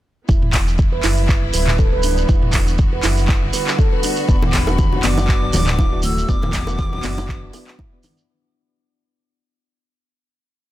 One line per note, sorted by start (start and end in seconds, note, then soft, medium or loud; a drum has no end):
0.27 1.00 E1 loud
0.27 8.24 D3 medium
0.27 4.24 G3 medium
0.27 8.24 B3 medium
0.27 2.26 E4 medium
0.27 0.36 E4 medium
0.27 kick loud
0.27 shekere soft
0.42 mid tom medium
0.53 kick medium
0.53 clap medium
0.53 open hi-hat loud
0.53 shekere loud
0.67 shekere medium
0.78 kick loud
0.78 shekere soft
0.92 0.98 B4 medium
1.03 1.50 F#1 medium
1.03 1.16 E4 loud
1.03 clap medium
1.03 open hi-hat loud
1.03 shekere medium
1.17 shekere medium
1.28 kick loud
1.28 clap medium
1.28 shekere soft
1.53 2.25 D1 loud
1.53 1.66 B4 medium
1.53 open hi-hat loud
1.53 shekere medium
1.67 clap medium
1.67 mid tom loud
1.67 shekere soft
1.79 1.86 A4 medium
1.79 kick loud
1.79 shekere soft
1.93 1.99 B4 medium
2.03 2.11 D4 medium
2.03 open hi-hat loud
2.03 shekere medium
2.17 shekere medium
2.28 3.00 E1 loud
2.28 2.36 E4 medium
2.28 6.25 F#4 medium
2.28 kick loud
2.28 shekere soft
2.42 mid tom loud
2.52 kick medium
2.52 clap medium
2.52 open hi-hat medium
2.52 shekere loud
2.67 shekere medium
2.78 kick loud
2.78 shekere soft
2.93 2.99 B4 medium
3.03 3.50 F#1 medium
3.03 3.16 E4 loud
3.03 clap medium
3.03 open hi-hat loud
3.03 shekere medium
3.17 shekere medium
3.28 kick loud
3.28 clap medium
3.28 shekere soft
3.53 3.66 B4 medium
3.53 open hi-hat medium
3.53 shekere medium
3.67 clap medium
3.67 shekere medium
3.79 3.86 A4 medium
3.79 kick loud
3.79 shekere soft
3.93 3.99 B4 medium
4.03 4.11 D4 medium
4.03 open hi-hat loud
4.03 shekere loud
4.16 shekere medium
4.28 5.00 E1 loud
4.28 8.24 F#3 medium
4.28 4.36 B3 medium
4.28 4.36 D4 loud
4.28 4.36 F#4 medium
4.28 4.36 B4 medium
4.28 4.36 D5 loud
4.28 4.46 B5 loud
4.28 kick loud
4.28 shekere soft
4.42 mid tom medium
4.42 high bongo medium
4.42 high conga medium
4.47 4.56 D6 medium
4.53 5.06 B5 loud
4.53 kick medium
4.53 clap loud
4.53 open hi-hat medium
4.53 low conga loud
4.53 shekere medium
4.67 5.01 D4 loud
4.67 5.01 F#4 medium
4.67 5.01 B4 medium
4.67 5.01 F#5 loud
4.67 high bongo medium
4.67 low bongo medium
4.67 shekere medium
4.78 kick loud
4.78 high conga loud
4.78 shekere soft
4.92 4.98 F#4 medium
4.92 low conga loud
5.03 5.50 F#1 medium
5.03 5.16 B3 loud
5.03 5.39 D4 medium
5.03 5.39 F#4 medium
5.03 5.39 B4 medium
5.03 5.39 D5 loud
5.03 5.54 D6 loud
5.03 clap medium
5.03 open hi-hat loud
5.03 high conga medium
5.03 shekere medium
5.18 low bongo loud
5.18 shekere medium
5.28 kick loud
5.28 clap medium
5.28 shekere soft
5.42 5.89 D4 medium
5.42 5.89 F#4 medium
5.42 5.89 B4 medium
5.42 5.89 D5 medium
5.53 6.25 D1 loud
5.53 5.66 F#4 medium
5.53 6.01 D6 loud
5.53 open hi-hat medium
5.53 high conga loud
5.53 low conga loud
5.53 shekere medium
5.67 clap medium
5.67 mid tom medium
5.67 shekere medium
5.78 5.86 E4 medium
5.78 kick loud
5.78 low bongo medium
5.78 shekere soft
5.92 6.02 D4 medium
5.92 5.98 F#4 medium
5.92 6.02 F#4 medium
5.92 6.02 B4 medium
5.92 6.02 D5 medium
6.03 6.11 A3 medium
6.03 6.31 E6 loud
6.03 open hi-hat medium
6.03 high conga medium
6.03 shekere medium
6.18 shekere medium
6.28 7.00 E1 loud
6.28 6.36 B3 medium
6.28 6.36 D4 medium
6.28 8.27 E4 medium
6.28 6.36 F#4 medium
6.28 6.36 B4 medium
6.28 6.36 D5 loud
6.28 7.79 D6 loud
6.28 kick loud
6.28 shekere soft
6.42 mid tom medium
6.42 high bongo medium
6.42 high conga loud
6.53 kick medium
6.53 clap loud
6.53 open hi-hat medium
6.53 low conga loud
6.53 shekere loud
6.67 7.01 D4 loud
6.67 7.01 F#4 medium
6.67 7.01 B4 medium
6.67 7.01 F#5 loud
6.67 high bongo medium
6.67 low bongo medium
6.67 shekere medium
6.79 kick loud
6.79 high conga loud
6.79 shekere soft
6.92 6.98 F#4 medium
6.92 low conga loud
7.03 7.50 F#1 medium
7.03 7.16 B3 loud
7.03 7.39 D4 loud
7.03 7.39 F#4 medium
7.03 7.39 B4 medium
7.03 7.39 D5 loud
7.03 clap medium
7.03 open hi-hat medium
7.03 high conga medium
7.03 shekere loud
7.18 low bongo loud
7.18 shekere soft
7.28 kick loud
7.28 clap medium
7.28 high conga medium
7.28 shekere soft
7.42 7.65 D4 medium
7.42 7.65 F#4 medium
7.42 7.65 B4 medium
7.42 7.65 D5 medium
7.53 7.61 B3 medium
7.53 open hi-hat medium
7.53 high bongo medium
7.53 shekere loud
7.67 7.73 D4 medium
7.67 7.73 F#4 medium
7.67 7.73 B4 medium
7.67 7.73 F#5 medium
7.67 clap medium
7.67 shekere medium
7.78 7.91 E4 loud
7.78 kick loud
7.78 mid tom medium
7.78 low bongo medium
7.78 shekere soft
7.92 8.03 B3 medium
7.92 7.98 D4 medium
7.92 7.98 F#4 medium
7.92 7.98 B4 medium
7.92 7.98 D5 medium
8.03 8.11 D4 medium
8.03 open hi-hat medium
8.03 low bongo medium
8.03 high conga medium
8.03 shekere medium
8.17 shekere medium